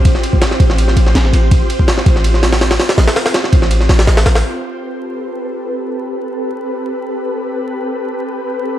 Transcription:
<<
  \new Staff \with { instrumentName = "Ambient pad" } { \time 4/4 \key a \minor \tempo 4 = 164 <c' f' g' c''>1~ | <c' f' g' c''>1~ | <c' f' g' c''>1 | <c' g' a' b'>1~ |
<c' g' a' b'>1~ | <c' g' a' b'>1 | }
  \new Staff \with { instrumentName = "808-style bass" } { \clef bass \time 4/4 \key a \minor a,,8 r4 a,,4 a,,8 a,,8 a,,8 | a,,8 r4 a,,2 r8 | a,,8 r4 a,,4 a,,8 a,,8 a,,8 | r1 |
r1 | r1 | }
  \new DrumStaff \with { instrumentName = "Drums" } \drummode { \time 4/4 <bd cymr>16 sn16 cymr16 bd16 <cymr sn>16 sn16 <bd cymr>16 sn16 cymr16 sn16 cymr16 sn16 <cymr sn>16 sn16 cymr8 | <bd cymr>8 cymr16 bd16 <hho sn>16 sn16 <bd cymr>16 sn16 cymr16 sn16 <hho sn>16 <hho sn>16 <hho sn>16 <hho sn>16 <hho sn>16 <hho sn>16 | <hho sn>16 <hho sn>16 <hho sn>16 <hho sn>16 <cymr sn>16 sn16 <bd cymr>16 sn16 cymr16 sn16 <hho sn>16 <hho sn>16 <hho sn>16 <hho sn>16 <hho sn>16 <hho sn>16 | r4 r4 r4 r4 |
r4 r4 r4 r4 | r4 r4 r4 r4 | }
>>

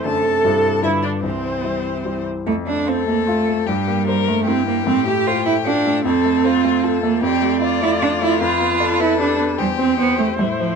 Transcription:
<<
  \new Staff \with { instrumentName = "Viola" } { \time 3/4 \key c \major \tempo 4 = 152 a'2 e'8 d'8 | c'2~ c'8 r8 | \key f \major r4 f'4 f'4 | r4 bes'4 bes'4 |
r4 a'4 a'4 | r4 a'4 a'4 | \key c \major d''2. | b'2. |
c''2. | }
  \new Staff \with { instrumentName = "Violin" } { \time 3/4 \key c \major a''2 e''8 d''8 | c''2~ c''8 r8 | \key f \major r4 a'2 | g'4 bes'4 g'4~ |
g'2. | a'4 f'4 a'4 | \key c \major g'4 f'2~ | f'4 a'2 |
g'2 e'4 | }
  \new Staff \with { instrumentName = "Cello" } { \time 3/4 \key c \major d8 c4. d4 | e2~ e8 r8 | \key f \major a8 d'8 c'8 bes8 a4 | g4. a8 c'8 bes8 |
c'8 g'8 f'8 e'8 d'4 | c'2~ c'8 bes8 | \key c \major c'4. e'8 d'8 e'8 | f'4. e'8 d'8 r8 |
g8 c'8 b8 a8 g8 f8 | }
  \new Staff \with { instrumentName = "Grand piano" } { \time 3/4 \key c \major <fis, a d' c''>4 <g, g e' c''>4 <g, g f' b'>4 | c,4 <g e' c''>4 <g e' c''>4 | \key f \major f,8 a8 c''8 a8 f'8 a8 | g,8 bes8 c''8 bes8 e'8 bes8 |
a,8 a8 c''8 a8 f'8 a8 | f,8 a8 c''8 a8 f'8 a8 | \key c \major f,8 a8 d''8 a8 f'8 a8 | f,8 b8 d''8 b8 g'8 b8 |
e,8 c'8 c''8 c'8 a,8 <e' c''>8 | }
>>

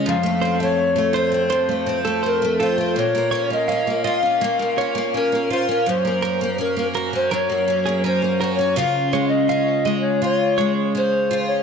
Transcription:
<<
  \new Staff \with { instrumentName = "Pan flute" } { \time 4/4 \key des \major \tempo 4 = 83 f''8. des''8. c''4. bes'8 c''8 | des''8. ees''8. f''4~ f''16 r16 bes'8 c''16 bes'16 | c''4 bes'16 bes'8 c''16 des''4 \tuplet 3/2 { c''4 des''8 } | \tuplet 3/2 { f''4 ees''8~ ees''4 des''8 } des''4 \tuplet 3/2 { c''4 des''8 } | }
  \new Staff \with { instrumentName = "Clean electric guitar" } { \time 4/4 \key des \major r8 c''16 r8. c''16 r16 c''16 r8 a'16 c''16 r16 a'16 r16 | r8 des''16 r16 f''8 ees''16 r8. des''8 r4 | r8 bes'16 r8. bes'16 r16 bes'16 r8 aes'16 bes'16 r16 bes'16 r16 | r8 des''16 r16 f''8 ees''16 r8. des''8 r4 | }
  \new Staff \with { instrumentName = "Twelve-string acoustic guitar" } { \time 4/4 \key des \major f,16 a16 c'16 a8 a16 f'16 c'16 f,16 a16 c'16 a16 c'16 a16 f'16 c'16 | bes,16 bes16 des'16 bes16 des'16 bes16 f'16 des'16 bes,16 bes16 des'16 bes16 des'16 bes16 f'16 des'16 | ges,16 bes16 des'16 bes16 des'16 bes16 ges'16 des'16 ges,16 bes16 des'16 bes16 des'16 bes16 ges'16 des'16 | <des f'>8 aes8 des'8 aes8 f'8 aes8 des'8 f'8 | }
>>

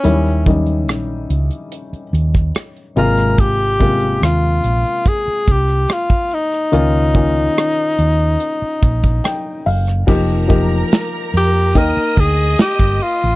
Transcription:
<<
  \new Staff \with { instrumentName = "Violin section" } { \time 4/4 \key ees \major \tempo 4 = 72 r1 | r1 | r1 | <bes' bes''>2 <ees'' ees'''>2 | }
  \new Staff \with { instrumentName = "Tenor saxophone" } { \time 4/4 \key ees \major des'8 r2. bes'8 | g'4 f'4 aes'8 g'8 f'8 ees'8~ | ees'2.~ ees'8 r8 | r4. g'8 bes'8 aes'8 g'8 f'8 | }
  \new Staff \with { instrumentName = "Grand piano" } { \time 4/4 \key ees \major <ees g des' fes'>8 <ees g des' ees'>2 r4 <c aes bes f'>8~ | <c aes bes f'>8 <c aes bes f'>2 r4. | <ees bes des' f'>8 <ees bes des' f'>2 r8 g''8 f''8 | <f bes ees' g'>8 <f bes ees' g'>4. <bes ees' g''>2 | }
  \new Staff \with { instrumentName = "Fingered electric bass" } { \clef bass \time 4/4 \key ees \major ees,4 bes,,8 des,16 r8. ees,8 r8 aes,,8~ | aes,,4 ees,8 bes,,16 r8. c,8 r4 | des,4 r8 ees,8 r8 bes,,8 r8 ges,,8 | f,,4 r8 f,8 ees,16 r16 d,8 r16 g,,16 r16 a,,16 | }
  \new DrumStaff \with { instrumentName = "Drums" } \drummode { \time 4/4 hh8 <hh bd>16 hh16 <hh ss>8 hh16 hh16 hh16 hh16 hh16 <hh bd ss>16 <hh ss>16 hh16 hh16 <hh ss>16 | <hh bd>8 <hh bd>16 hh16 <hh ss>8 hh16 hh16 <hh bd>8 <hh bd>16 <hh ss>16 <hh ss>16 bd16 hh16 <hh ss>16 | hh8 <hh bd>16 hh16 <hh ss>8 hh16 hh16 hh8 <hh bd>16 <hh bd>16 <hh ss>8 hho16 <hh ss>16 | <cymc bd>16 hh16 <hh bd>16 hh16 <hh sn>8 hh16 hh16 <hh bd>16 hh16 <hh bd>16 hh16 <hh sn>16 bd16 hh16 hh16 | }
>>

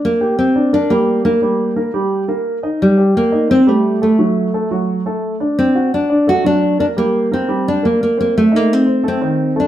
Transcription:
<<
  \new Staff \with { instrumentName = "Grand piano" } { \time 4/4 \key g \minor \tempo 4 = 173 r8 <g' g''>4 <d' d''>8 <bes bes'>8 <g g'>4 <bes bes'>8 | <g g'>4 <bes bes'>8 <g g'>4 <bes bes'>4 <ees' ees''>8~ | <ees' ees''>8 <g' g''>4 <ees' ees''>8 <c' c''>8 <g g'>4 <a a'>8 | <fis fis'>4 <a a'>8 <fis fis'>4 <a a'>4 <d' d''>8~ |
<d' d''>8 <fis' fis''>4 <d' d''>8 <a a'>8 <fis fis'>4 <bes bes'>8 | <g g'>4 <bes bes'>8 <g g'>4 <bes bes'>4 <c' c''>8~ | <c' c''>8 <ees' ees''>4 <c' c''>8 <a a'>8 <ees ees'>4 <a a'>8 | }
  \new Staff \with { instrumentName = "Nylon-string guitar" } { \time 4/4 \key g \minor bes4 c'4 d'8 bes4 bes8~ | bes4. r2 r8 | g4 bes4 c'8 a4 a8~ | a4. r2 r8 |
c'4 d'4 fis'8 d'4 d'8 | bes4 c'4 d'8 bes8 bes8 bes8 | a8 bes8 c'4 c'4. d'8 | }
>>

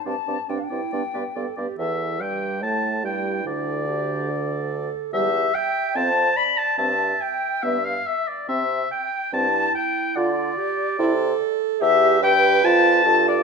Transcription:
<<
  \new Staff \with { instrumentName = "Flute" } { \time 4/4 \key c \major \tempo 4 = 143 a''4 \tuplet 3/2 { g''16 f''16 g''4~ } g''4. r8 | e''4 g''4 a''4 g''4 | d''2.~ d''8 r8 | e''4 g''4 a''4 b''8 a''8 |
a''4 g''4 e''8 f''8 e''8 d''8 | e''4 g''4 a''4 g''4 | d''2.~ d''8 r8 | e''4 g''4 a''4. d''8 | }
  \new Staff \with { instrumentName = "Oboe" } { \time 4/4 \key c \major d''8 d''8 d''8 d''8 d''8 d''8 d''8 d''8 | e''4 g''4 a''4 g''4 | d''2.~ d''8 r8 | e''4 g''4 a''4 b''8 a''8 |
a''4 g''4 e''8 f''8 e''8 d''8 | e''4 g''4 a''4 g''4 | d''2.~ d''8 r8 | e''4 g''4 a''4. d''8 | }
  \new Staff \with { instrumentName = "Clarinet" } { \time 4/4 \key c \major d'8 d'8 d'8 e'8 d'8 b'8 a'8 g'8 | a'4 g'4 e'2~ | e'4 g'4 a'2 | g'4 e''4 c''4 d''4 |
e''2.~ e''8 r8 | r2 e'2 | f'4 g'4 a'2 | g'4 b'2 a'4 | }
  \new Staff \with { instrumentName = "French horn" } { \time 4/4 \key c \major c'8 c'8 c'8 c'8 b8 b8 b8 b8 | e4 g4 a4 g4 | d2.~ d8 r8 | g8 r4. c'8 r4. |
c'8 r4. b8 r4. | c'8 r4. c'8 r4. | f'8 r4. e'8 r4. | g'4 g'4 f'4 f'4 | }
  \new Staff \with { instrumentName = "Bassoon" } { \clef bass \time 4/4 \key c \major g,8 g,8 g,8 g,8 g,8 g,8 g,8 g,8 | e,4 g,4 a,4 g,4 | d,2.~ d,8 r8 | e,4 r4 f,4 r4 |
g,4 r4 g,4 r4 | c4 r4 g,4 r4 | d4 r4 c4 r4 | e,4 g,4 f,4 g,4 | }
>>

